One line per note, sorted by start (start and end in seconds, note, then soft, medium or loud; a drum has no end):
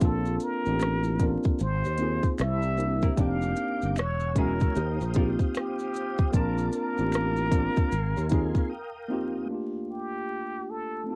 0.00 0.36 A#1 loud
0.00 0.56 A#3 medium
0.00 0.56 C4 medium
0.00 0.57 D4 medium
0.00 0.57 F4 medium
0.00 0.45 A4 medium
0.00 kick loud
0.00 closed hi-hat medium
0.00 maracas medium
0.05 0.58 A4 loud
0.26 maracas soft
0.40 1.37 A#4 loud
0.40 closed hi-hat medium
0.40 maracas soft
0.65 1.35 A1 medium
0.65 1.14 A#3 medium
0.65 1.15 C4 medium
0.65 1.15 D4 medium
0.65 1.16 F4 soft
0.65 maracas soft
0.69 1.16 G4 medium
0.80 finger snap medium
0.80 cross-stick loud
0.80 closed hi-hat medium
0.80 maracas medium
1.04 maracas soft
1.19 1.59 A#3 medium
1.19 1.60 C4 medium
1.19 1.60 D4 medium
1.19 1.61 F4 medium
1.19 kick medium
1.19 closed hi-hat medium
1.19 maracas soft
1.24 1.61 A#4 medium
1.44 kick medium
1.44 maracas soft
1.59 1.82 G#1 loud
1.59 2.35 C5 loud
1.59 closed hi-hat medium
1.59 maracas medium
1.85 2.19 D#2 medium
1.85 cross-stick soft
1.85 maracas soft
1.98 2.38 A#3 medium
1.98 2.38 C4 medium
1.98 2.39 D#4 medium
1.98 2.40 F4 medium
1.98 closed hi-hat medium
1.98 maracas soft
2.03 2.40 G#4 medium
2.23 kick medium
2.23 maracas soft
2.38 3.08 C2 loud
2.38 3.14 E5 loud
2.38 finger snap medium
2.38 cross-stick loud
2.38 closed hi-hat medium
2.38 maracas medium
2.62 maracas soft
2.76 3.13 A#3 medium
2.76 3.13 C4 medium
2.76 3.14 D4 medium
2.76 3.15 E4 medium
2.76 closed hi-hat medium
2.76 maracas soft
2.81 3.15 G4 medium
3.02 3.13 G3 soft
3.02 3.13 C4 medium
3.02 3.12 E4 medium
3.02 3.12 A#4 medium
3.02 kick medium
3.02 maracas soft
3.14 3.96 A#3 medium
3.14 3.96 C4 medium
3.14 3.95 A#4 medium
3.14 3.96 D5 medium
3.14 3.21 E5 medium
3.14 3.95 G5 medium
3.14 3.95 D6 medium
3.14 kick loud
3.14 closed hi-hat medium
3.14 maracas medium
3.18 3.52 F1 loud
3.18 3.97 D4 medium
3.18 3.97 D#4 medium
3.18 3.98 G4 loud
3.18 4.00 F5 loud
3.42 maracas soft
3.56 closed hi-hat medium
3.56 maracas soft
3.82 3.97 G1 medium
3.82 maracas soft
3.96 4.66 E1 medium
3.96 4.74 C#5 medium
3.96 4.40 C#5 medium
3.96 4.75 F#5 medium
3.96 4.74 G#5 medium
3.96 4.74 E6 medium
3.96 finger snap medium
3.96 cross-stick loud
3.96 closed hi-hat medium
3.96 maracas medium
4.20 maracas soft
4.35 4.51 F#3 medium
4.35 4.75 G#3 medium
4.35 4.75 B3 medium
4.35 4.76 C#4 medium
4.35 4.52 C#4 medium
4.35 4.76 E4 medium
4.35 4.52 E4 medium
4.35 4.52 G#4 medium
4.35 5.16 A#4 loud
4.35 kick medium
4.35 closed hi-hat medium
4.35 maracas soft
4.39 4.77 F#4 medium
4.60 kick medium
4.60 maracas soft
4.74 4.97 D#2 loud
4.74 6.32 C5 medium
4.74 8.66 F5 medium
4.74 6.31 G5 medium
4.74 6.31 D#6 medium
4.74 closed hi-hat medium
4.74 maracas medium
5.01 5.35 A#1 medium
5.01 cross-stick soft
5.01 maracas soft
5.14 5.30 G3 medium
5.14 6.21 A#3 medium
5.14 6.22 C4 medium
5.14 5.31 C4 medium
5.14 6.23 D#4 medium
5.14 5.31 F4 medium
5.14 6.23 F4 medium
5.14 5.31 A#4 medium
5.14 kick loud
5.14 closed hi-hat medium
5.14 maracas soft
5.18 6.24 G4 medium
5.39 kick medium
5.39 maracas soft
5.55 6.37 G4 medium
5.55 finger snap medium
5.55 cross-stick medium
5.55 closed hi-hat medium
5.55 maracas medium
5.79 maracas soft
5.94 closed hi-hat medium
5.94 maracas soft
6.18 kick medium
6.18 maracas soft
6.32 6.68 A#1 medium
6.32 6.87 A#3 medium
6.32 6.88 C4 medium
6.32 6.88 D4 medium
6.32 6.89 F4 medium
6.32 9.45 A#4 medium
6.32 6.74 A#4 loud
6.32 7.89 A5 medium
6.32 7.89 D6 medium
6.32 kick loud
6.32 closed hi-hat medium
6.32 maracas medium
6.37 6.90 A5 loud
6.58 maracas soft
6.72 9.07 A#4 loud
6.72 closed hi-hat medium
6.72 maracas medium
6.96 7.67 A1 medium
6.96 7.46 A#3 medium
6.96 7.46 C4 medium
6.96 7.47 D4 medium
6.96 7.47 F4 medium
6.96 maracas soft
7.01 7.48 G4 medium
7.12 finger snap medium
7.12 cross-stick loud
7.12 closed hi-hat medium
7.12 maracas medium
7.36 maracas soft
7.50 7.90 A#3 medium
7.50 7.91 C4 medium
7.50 7.92 D4 medium
7.50 7.92 F4 medium
7.50 kick loud
7.50 closed hi-hat medium
7.50 maracas soft
7.55 7.93 A#4 medium
7.76 kick loud
7.76 maracas soft
7.90 8.13 G#1 medium
7.90 8.68 G#5 medium
7.90 8.69 C6 medium
7.90 closed hi-hat medium
7.90 maracas medium
8.17 8.51 D#2 medium
8.17 cross-stick soft
8.17 maracas soft
8.29 8.69 A#3 medium
8.29 8.70 C4 medium
8.29 8.70 D#4 medium
8.29 8.71 F4 medium
8.29 kick medium
8.29 closed hi-hat medium
8.29 maracas soft
8.34 8.72 G#4 medium
8.55 kick medium
8.55 cross-stick soft
8.55 maracas soft
8.69 9.48 F5 medium
8.69 9.48 G5 medium
8.69 9.48 D#6 medium
9.09 9.45 A#3 medium
9.09 9.45 C4 medium
9.09 9.46 D#4 medium
9.09 9.46 F4 medium
9.13 9.47 G4 medium
9.46 11.02 A3 medium
9.46 11.03 A#3 medium
9.50 11.04 D4 medium
9.50 11.05 F4 medium
9.54 11.06 G4 medium
9.91 10.72 G4 medium
10.70 11.11 A4 medium
11.04 11.13 A3 soft
11.04 11.15 C4 soft
11.08 11.15 A#3 soft
11.08 11.15 D#4 soft
11.08 11.15 F4 soft
11.08 11.15 A#4 medium